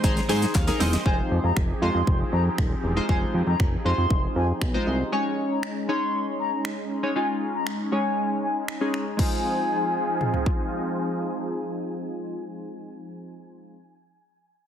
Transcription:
Already playing: D#3 G#3 C4
0.04 G#1 D#4 G#4 C5 A#5, kick, snare, closed hi-hat, shaker
0.16 muted clean electric guitar stroke, snare, closed hi-hat, shaker
0.29 G#2 C4 D#4 G#4 C5 G#5, snare, open hi-hat, shaker
0.42 muted clean electric guitar stroke, snare, closed hi-hat, shaker
0.54 D#2 F5, muted clean electric guitar stroke, kick, snare, clap, closed hi-hat, shaker
0.67 D#4 G#4 A#4, muted clean electric guitar stroke, snare, closed hi-hat, shaker
0.80 E1 C4 D#4 G#4 C5 D#5, snare, open hi-hat, shaker
0.92 C4 D#4 G#4 C5, snare, closed hi-hat, shaker
1.05 F1 F3 G#3 C4 D#4 F4 G4 G#4 C5 G#5, kick
1.31 F2
1.44 F2 A#5
1.57 F1, finger snap, kick
1.82 F2 G#3 D#4 F4 C5 C6
1.95 F2
2.07 F1, kick
2.32 F2 A#5
2.58 D#1, finger snap, kick
2.84 E1
2.96 G#3 D#4 F4 C5
3.09 F1 G#3 D#4 F4 C5 G#5, kick
3.34 F2
3.47 F2 A#5
3.60 F1, finger snap, kick
3.85 F2 G#3 D#4 F4 C5 C6
3.98 F2
4.10 F1, kick
4.36 F2 G#5
4.62 B1, finger snap, kick
4.74 G#3 D#4 F4 C5
4.87 C2
5.12 G#3 C#4 D#4 C#5 G#5
5.51 A#5
5.63 finger snap
5.88 G#3 C#4 D#4 C#5 C6
6.39 A#5
6.65 finger snap
7.03 G#3 C#4 D#4 C#5
7.15 G#3 C#4 D#4 F4 G#5
7.54 A#5
7.67 finger snap
7.92 G#3 C#4 D#4 C#5 G#5
8.43 G#5
8.68 finger snap
8.81 G#3 C#4 D#4 G#4
8.94 finger snap
9.17 F3 G#3 C4 D#4 F4 G#4 G#5, kick, crash
9.21 C5
10.21 mid tom
10.34 floor tom
10.46 kick

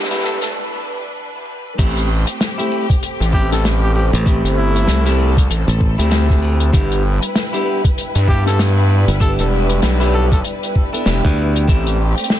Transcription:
Already playing: G3 D4 E4 B4 D5 G5, riser
0.03 snare
0.11 G1 B3 D4 E4 G4, snare, closed hi-hat
0.13 snare
0.19 snare
0.24 A4, snare
0.41 G1 A4, snare, closed hi-hat
1.78 A1 A3 C4 E4 G4, kick, closed hi-hat, crash
1.97 closed hi-hat
2.02 A4 C5 G5
2.27 closed hi-hat
2.41 snare, closed hi-hat
2.58 A3 C4 E4 G4, closed hi-hat
2.72 tambourine
2.90 kick, closed hi-hat
3.03 closed hi-hat
3.21 A1, closed hi-hat
3.33 A3 C4 E4 G4, kick
3.52 A4, snare, closed hi-hat
3.65 snare, closed hi-hat
3.83 G4
3.95 G4, tambourine
4.13 A1, closed hi-hat
4.25 A3 C4 E4 G4 A4, kick, closed hi-hat
4.44 G1, closed hi-hat
4.57 E4
4.76 closed hi-hat
4.88 C2, snare, closed hi-hat
5.06 A3 C4 E4 G4, snare, closed hi-hat
5.18 tambourine
5.37 kick, closed hi-hat
5.50 A1, closed hi-hat
5.68 A1, closed hi-hat
5.81 kick
5.98 D2 A3 C4 E4 G4, closed hi-hat
6.11 snare, closed hi-hat
6.30 kick, snare
6.42 tambourine
6.60 closed hi-hat
6.73 G1 G3 B3 D4 E4 G4 B4, kick, closed hi-hat
6.92 closed hi-hat
7.22 B4, closed hi-hat
7.35 snare, closed hi-hat
7.53 B3 D4 E4 G4, closed hi-hat
7.66 tambourine
7.84 D5, kick, closed hi-hat
7.98 closed hi-hat
8.15 G2, closed hi-hat
8.28 B3 D4 E4 G4, kick
8.46 A4, snare, closed hi-hat
8.59 snare, closed hi-hat
8.90 tambourine
9.08 G1, closed hi-hat
9.20 B3 D4 E4 G4 A4, kick, closed hi-hat
9.39 E1 A4, closed hi-hat
9.70 closed hi-hat
9.82 B1, snare, closed hi-hat
10.00 B3 D4 E4 G4, snare, closed hi-hat
10.13 A4, tambourine
10.32 A4, kick, closed hi-hat
10.44 closed hi-hat
10.63 closed hi-hat
10.75 kick
10.93 B3 D4 E4 A4, closed hi-hat
11.06 E1 B3 D4 E4 G4, snare, closed hi-hat
11.25 D2, kick, snare
11.38 tambourine
11.56 closed hi-hat
11.68 A1 A3 C4 E4 G4, kick, closed hi-hat
11.84 A4, closed hi-hat
11.93 C5
12.18 closed hi-hat
12.24 closed hi-hat
12.30 snare

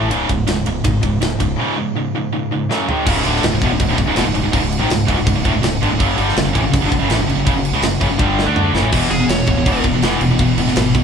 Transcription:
Already playing: A1 A2 E3 A3
0.09 C#1 C#2 G#2 C#3, ride
0.29 C#1 C#2 G#2, kick, ride
0.47 C#1 C#2 G#2, snare, ride
0.66 C#1 C#2 G#2, ride
0.84 G#1 C#2 G#2, kick, ride
1.01 C#1 C#2 G#2, kick, ride
1.20 C#1 C#2 G#2, snare, ride
1.39 C#1 C#2 G#2, kick, ride
1.56 C#2 G#2 C#3
1.76 C#2 G#2
1.96 C#2 G#2
2.15 C#2 G#2
2.33 C#2 G#2
2.51 C#2 G#2
2.70 F#2 C#3 F#3, snare
2.88 G#2 D#3 G#3, floor tom
3.06 C#1 C#2 G#2 C#3, kick, crash
3.25 D1 D2 A2 D3, crash
3.36 snare
3.43 C#1 C#2 G#2, snare, crash
3.52 C#1 C#2 G#2
3.62 E1 E2 B2, kick, crash
3.70 C#1 C#2 G#2
3.80 C#1 C#2 G#2, kick, crash
3.87 D1 D2 A2
3.97 C#1 C#2 G#2, kick, crash
4.06 C#1 C#2 G#2
4.16 E1 E2 B2, snare, crash
4.26 C#1 C#2 G#2
4.35 C#1 C#2 G#2, crash
4.45 C#1 C#2 G#2
4.53 C#1 C#2 G#2, kick, crash
4.62 C#1 C#2 G#2
4.72 crash
4.81 G#1 G#2 D#3
4.90 C#1 C#2 G#2, snare, crash
5.08 C#1 C#2 G#2, kick, crash
5.15 C#1 C#2 G#2
5.19 G#2
5.27 C#1 C#2 G#2, kick, crash
5.36 C#1 C#2 G#2
5.45 D1 D2 A2, kick, crash
5.54 C#1 C#2 G#2
5.62 C#1 C#2 G#2, snare, crash
5.66 C#2 G#2
5.82 G1 G2 D3, crash
5.91 C#1 C#2 G#2
6.00 F#1 F#2 C#3 F#3, kick, crash
6.18 G1 G2 D3 G3, crash
6.29 snare
6.36 F#1 F#2 C#3, snare, crash
6.45 F#1 F#2 C#3
6.55 A1 A2 E3, kick, crash
6.62 F#1 F#2 C#3
6.66 C#3
6.71 F#1 F#2 C#3, kick, crash
6.76 F#2 C#3
6.81 G1 G2 D3
6.85 G2 D3
6.91 F#1 F#2 C#3, kick, crash
6.96 F#2 C#3
7.01 F#1 F#2 C#3
7.09 A1 A2 E3, snare, crash
7.13 A2 E3
7.18 F#1 F#2 C#3
7.22 F#2 C#3
7.28 F#1 F#2 C#3, crash
7.35 F#1 F#2 C#3
7.39 F#2 C#3
7.47 F#1 F#2 C#3, kick, crash
7.54 F#1 F#2 C#3
7.65 crash
7.72 C#2 C#3 G#3
7.82 F#1 F#2 C#3, snare, crash
8.01 F#1 F#2 C#3, kick, crash
8.09 F#1 F#2 C#3
8.19 G1 G2 D3 G3, kick, high tom
8.39 snare
8.46 D2 D3 A3 D4
8.56 mid tom
8.74 F#1 F#2 C#3, snare
8.82 A1 A2 E3
8.92 E1 E2 B2 E3, kick, crash
9.10 E1 E2 B2 G#4, crash
9.20 E2 B2
9.28 E1 E2 B2 C#5, snare, crash
9.47 C#1 E2 B2, kick, crash
9.57 E2 B2
9.66 E1 E2 B2 E3, kick, crash
9.84 E1 E2 B2, kick, crash
9.94 E2 B2
10.02 E1 E2 B2 E3, snare, crash
10.21 E1 E2 B2, crash
10.31 E2 B2
10.39 E1 E2 B2 E3, kick, crash
10.57 E1 E2 B2, crash
10.68 E2 B2, snare
10.76 G#1 E2 B2, snare, crash
10.95 B1 E2 B2, kick, crash

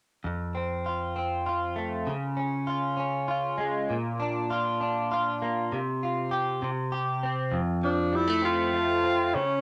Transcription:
0.24 F2
0.55 C4
0.86 F4
1.16 C4
1.46 F4
1.76 A3
2.07 C#3
2.37 C#4
2.67 F4
2.97 C#4
3.28 F4
3.58 G#3
3.90 A#2
4.20 D4
4.50 F4
4.81 D4
5.12 F4
5.42 A#3
5.72 C3
6.03 F4
6.31 G4
6.62 C3
6.92 G4
7.23 C4
7.51 F2
7.83 F3 D4
8.13 G3 E4
8.27 A3
8.42 C4 F4
8.73 A3
9.03 C4
9.35 C#3 C#4

